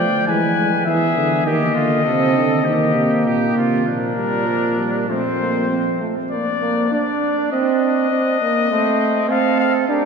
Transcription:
Already playing: euphonium A3, trumpet D5 G5
0.27 tuba E3, euphonium G#3, trumpet B4 G#5
0.58 euphonium G#3
0.85 tuba E3, euphonium B3, trumpet G#4 E5
1.17 tuba D3
1.46 tuba D#3, euphonium A#3, trumpet G4 D#5
1.75 tuba D3, trumpet F4
2.05 tuba C3, euphonium C4, trumpet A4
2.36 tuba D3
2.64 tuba D#3, euphonium A#3, trumpet G4
2.94 tuba C3
3.25 tuba A#2, trumpet G4
3.55 tuba C3, trumpet F4
3.85 tuba A#2, euphonium F3, trumpet D4 A#4
4.16 euphonium G3
4.47 euphonium F3
4.79 euphonium G3
5.09 tuba F2, euphonium A3, trumpet C4 C5
5.40 euphonium A#3
5.70 euphonium C4
6.01 euphonium A3
6.31 euphonium A#3, trumpet D4 D5
6.61 euphonium A#3
6.92 euphonium D4, trumpet D5
7.52 euphonium C4, trumpet D#5
8.11 euphonium C4
8.42 euphonium A#3
8.70 euphonium A3, trumpet C4
9.29 euphonium C4, trumpet A4 F5
9.60 trumpet F5
9.89 euphonium D4, trumpet G4 A#4

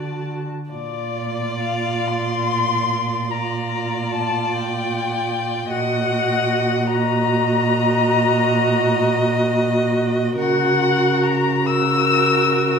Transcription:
Already playing: cello D3, viola F#4, violin D5 A5
0.71 cello A#2, viola F4, violin D5
1.62 violin F5
2.08 violin C6
3.31 viola F4, violin D5 A#5
4.12 violin A5
4.53 violin G5
5.71 cello A#2, viola F#4, violin D#5 F#5
6.87 viola F#4, violin D#5 A#5
10.37 cello C#3, viola F#4, violin A#4 F#5
11.24 violin A#5
11.65 viola F#4, violin A#4 E6

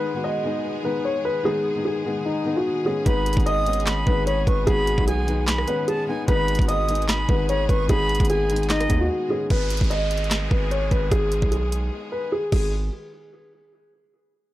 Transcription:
Already playing: felt piano D#3 G#3 B3 D#4, string section D#3 G#3 B3 G#4, grand piano B4
0.14 felt piano D#3 G#3 B3 F#4
0.24 grand piano D#5
0.43 felt piano D#3 G#3 B3 D#4
0.83 felt piano D#3 G#3 B3 D#4, grand piano B4
1.05 grand piano C#5
1.25 grand piano B4
1.43 felt piano D#3 G#3 B3 D#4, grand piano G#4
1.74 felt piano D#3 G#3 B3 D#4
1.85 grand piano G#4
2.05 felt piano D#3 G#3 B3 D#4
2.26 grand piano D#4
2.44 felt piano D#3 G#3 B3 D#4
2.57 grand piano F#4
2.84 felt piano D#3 G#3 B3 C#4, grand piano G#4
3.05 808-style bass G#1, felt piano D#3 G#3 B3 D#4, string section G#3, grand piano B4, flute B5, kick, closed hi-hat
3.26 closed hi-hat
3.33 808-style bass G#1, felt piano D#3 G#3 B3, kick, closed hi-hat
3.38 felt piano D#4, closed hi-hat
3.46 grand piano D#5, flute D#6, closed hi-hat
3.65 felt piano D#3 G#3 B3 C#4, closed hi-hat
3.73 closed hi-hat
3.80 closed hi-hat
3.86 flute B5, snare, clap, closed hi-hat
4.06 808-style bass G#1, felt piano D#3 G#3 B3 D#4, grand piano B4, kick
4.27 grand piano C#5, flute B5, closed hi-hat
4.47 808-style bass G#1, grand piano B4, flute C#6, kick, closed hi-hat
4.66 808-style bass G#1, felt piano D#3 G#3 B3 F#4, grand piano G#4, flute B5, kick, closed hi-hat
4.87 closed hi-hat
4.96 808-style bass B1, felt piano D#3 G#3 B3 D#4, kick
5.07 grand piano G#4, flute G#5, closed hi-hat
5.26 felt piano D#3 G#3 B3 D#4, closed hi-hat
5.47 flute B5, snare, clap, closed hi-hat
5.58 cross-stick
5.66 felt piano D#3 G#3 B3 C#4, grand piano B4, closed hi-hat
5.88 grand piano G#4, flute A5, closed hi-hat
6.07 felt piano D#3 G#3 B3 D#4, flute G#5
6.26 808-style bass G#1, felt piano D#3 G#3 B3 D#4, string section B3 G#4, grand piano B4, flute B5, kick, closed hi-hat
6.48 closed hi-hat
6.55 808-style bass G#1, felt piano D#3 G#3, kick, closed hi-hat
6.60 felt piano B3 F#4, closed hi-hat
6.68 grand piano D#5, flute D#6, closed hi-hat
6.87 felt piano D#3 G#3 B3 D#4, closed hi-hat
6.95 closed hi-hat
7.02 closed hi-hat
7.08 flute B5, snare, clap, closed hi-hat
7.27 808-style bass G#1, felt piano D#3 G#3 B3 D#4, grand piano B4, kick
7.49 grand piano C#5, flute B5, closed hi-hat
7.69 808-style bass G#1, grand piano B4, flute C#6, kick, closed hi-hat
7.88 808-style bass G#1, felt piano D#3 G#3 B3 D#4, grand piano G#4, flute B5, kick, closed hi-hat
8.09 closed hi-hat
8.15 felt piano D#3, closed hi-hat
8.19 808-style bass G#1, felt piano G#3 B3 D#4, kick, closed hi-hat
8.25 closed hi-hat
8.30 grand piano G#4, flute G#5, closed hi-hat
8.49 felt piano D#3 G#3 B3 D#4, closed hi-hat
8.56 closed hi-hat
8.63 closed hi-hat
8.70 grand piano D#4, flute D#5, snare, clap, closed hi-hat
8.80 cross-stick, closed hi-hat
8.88 808-style bass D#2, felt piano D#3 G#3 B3 D#4, kick, closed hi-hat
9.01 grand piano F#4
9.29 felt piano D#3 G#3 B3 C#4, grand piano G#4
9.50 808-style bass G#1, string section D#3 G#3 B3 G#4, grand piano B4, kick, closed hi-hat, downlifter
9.70 closed hi-hat
9.77 808-style bass G#1, kick, closed hi-hat
9.84 closed hi-hat
9.90 grand piano D#5, closed hi-hat
10.11 closed hi-hat
10.17 closed hi-hat
10.24 closed hi-hat
10.31 snare, clap, closed hi-hat
10.51 808-style bass G#1, grand piano B4, kick
10.71 grand piano C#5, closed hi-hat
10.91 808-style bass G#1, grand piano B4, kick, closed hi-hat
11.11 808-style bass G#1, grand piano G#4, kick, closed hi-hat
11.32 closed hi-hat
11.42 808-style bass B1, kick
11.52 grand piano G#4, closed hi-hat
11.72 closed hi-hat
12.12 grand piano B4
12.32 grand piano G#4
12.52 808-style bass G#1, string section D#3 G#3 B3 G#4, grand piano G#4, kick, crash

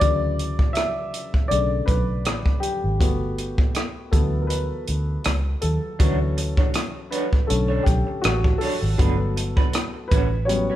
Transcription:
0.00 fingered electric bass D2, grand piano C#3 E3 F#3 D5, kick, closed hi-hat
0.39 closed hi-hat
0.59 kick
0.73 grand piano E5, cross-stick, closed hi-hat
1.14 closed hi-hat
1.34 kick
1.48 fingered electric bass B1, grand piano C#3 D3 A3 D5, closed hi-hat
1.86 fingered electric bass B1, grand piano B4, kick, closed hi-hat
2.25 fingered electric bass A1, cross-stick, closed hi-hat
2.46 kick
2.60 grand piano G4, closed hi-hat
2.84 fingered electric bass G#1
2.99 fingered electric bass G1, grand piano A3 B3 F#4, kick, closed hi-hat
3.38 closed hi-hat
3.58 kick
3.75 cross-stick, closed hi-hat
4.11 fingered electric bass D2, grand piano E3 F#3 B3 A4, kick, closed hi-hat
4.42 grand piano A#4
4.47 grand piano B4, closed hi-hat
4.88 fingered electric bass D2, closed hi-hat
5.24 fingered electric bass C#2, cross-stick, closed hi-hat
5.61 fingered electric bass D#2, grand piano A4, closed hi-hat
5.99 fingered electric bass D2, grand piano E3 F#3 C#4, clean electric guitar D4 F#4 C#5, kick, closed hi-hat
6.19 muted clean electric guitar stroke
6.37 muted clean electric guitar stroke, closed hi-hat
6.57 clean electric guitar D4 F#4 C#5, kick
6.74 cross-stick, closed hi-hat
6.95 muted clean electric guitar stroke
7.11 clean electric guitar D4 F#4 C#5, grand piano B4, closed hi-hat
7.32 muted clean electric guitar stroke, kick
7.47 fingered electric bass B1, grand piano D3 A3 C#4 A4, muted clean electric guitar stroke, closed hi-hat
7.68 clean electric guitar D4 A4 C#5
7.83 fingered electric bass B1, grand piano G4, muted clean electric guitar stroke, kick, closed hi-hat
8.07 muted clean electric guitar stroke
8.21 fingered electric bass A1, grand piano F#4, muted clean electric guitar stroke, cross-stick, closed hi-hat
8.44 muted clean electric guitar stroke, kick
8.58 clean electric guitar D4 A4, grand piano A4, open hi-hat
8.62 clean electric guitar C#5
8.81 fingered electric bass G#1, muted clean electric guitar stroke
8.98 fingered electric bass G1, grand piano F#3 A3 B3, clean electric guitar D4 F#4 B4, kick, closed hi-hat
9.19 muted clean electric guitar stroke
9.36 muted clean electric guitar stroke, closed hi-hat
9.57 clean electric guitar D4 F#4 B4, kick
9.73 cross-stick, closed hi-hat
9.94 muted clean electric guitar stroke
10.08 clean electric guitar G3, grand piano B4, kick, closed hi-hat
10.12 fingered electric bass A1, clean electric guitar C#4 F#4
10.32 muted clean electric guitar stroke
10.45 grand piano F#3 G3 B3 C#4 C#5
10.49 muted clean electric guitar stroke, closed hi-hat
10.70 clean electric guitar G3 C#4 F#4

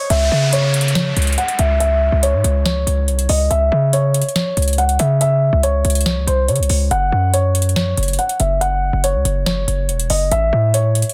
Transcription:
0.10 808-style bass C#2, grand piano E5, closed hi-hat, downlifter
0.31 808-style bass C#3
0.53 grand piano C#5, closed hi-hat
0.74 closed hi-hat
0.81 closed hi-hat
0.88 closed hi-hat
0.95 grand piano C#5, snare, closed hi-hat
1.17 808-style bass C#2, closed hi-hat
1.22 closed hi-hat
1.27 closed hi-hat
1.32 closed hi-hat
1.38 grand piano F#5, closed hi-hat
1.48 closed hi-hat
1.59 808-style bass C#2, grand piano E5, closed hi-hat
1.80 grand piano E5, closed hi-hat
2.12 808-style bass C#2
2.23 grand piano C#5, closed hi-hat
2.34 808-style bass G#2
2.44 808-style bass C#2, closed hi-hat
2.65 grand piano C#5, snare, closed hi-hat
2.87 808-style bass C#2, closed hi-hat
3.08 808-style bass C2, closed hi-hat
3.19 closed hi-hat
3.29 808-style bass C#2, grand piano D#5, open hi-hat
3.50 808-style bass C#2, grand piano E5, closed hi-hat
3.72 808-style bass C#3
3.93 grand piano C#5, closed hi-hat
4.14 closed hi-hat
4.22 closed hi-hat
4.29 closed hi-hat
4.36 grand piano C#5, snare, closed hi-hat
4.57 808-style bass C#2, closed hi-hat
4.62 closed hi-hat
4.68 closed hi-hat
4.73 closed hi-hat
4.78 grand piano F#5, closed hi-hat
4.89 closed hi-hat
4.99 808-style bass C#3, grand piano E5, closed hi-hat
5.21 grand piano E5, closed hi-hat
5.53 808-style bass C#2
5.63 grand piano C#5, closed hi-hat
5.85 808-style bass C#2, closed hi-hat
5.90 closed hi-hat
5.95 closed hi-hat
6.01 closed hi-hat
6.06 808-style bass C2, grand piano C#5, snare
6.17 808-style bass C#2
6.27 808-style bass C2, grand piano C5, closed hi-hat
6.48 808-style bass C#3, grand piano C#5, closed hi-hat
6.56 808-style bass C2, closed hi-hat
6.63 closed hi-hat
6.69 808-style bass C#2, open hi-hat
6.91 808-style bass F#1, grand piano F#5, closed hi-hat
7.12 808-style bass F#2
7.33 grand piano C#5, closed hi-hat
7.55 closed hi-hat
7.62 closed hi-hat
7.69 closed hi-hat
7.76 grand piano C#5, snare, closed hi-hat
7.97 808-style bass F#1, closed hi-hat
8.03 closed hi-hat
8.08 closed hi-hat
8.13 closed hi-hat
8.19 grand piano F#5, closed hi-hat
8.29 closed hi-hat
8.40 808-style bass F#1, grand piano E5, closed hi-hat
8.61 grand piano F#5, closed hi-hat
8.93 808-style bass F#1
9.04 grand piano C#5, closed hi-hat
9.14 808-style bass C#2
9.25 808-style bass F#1, closed hi-hat
9.46 grand piano C#5, snare, closed hi-hat
9.68 808-style bass F#1, closed hi-hat
9.89 808-style bass E1, closed hi-hat
10.00 closed hi-hat
10.10 808-style bass F#1, grand piano D#5, open hi-hat
10.31 808-style bass A1, grand piano E5, closed hi-hat
10.53 808-style bass A2
10.74 grand piano C#5, closed hi-hat
10.95 closed hi-hat
11.02 closed hi-hat
11.09 closed hi-hat

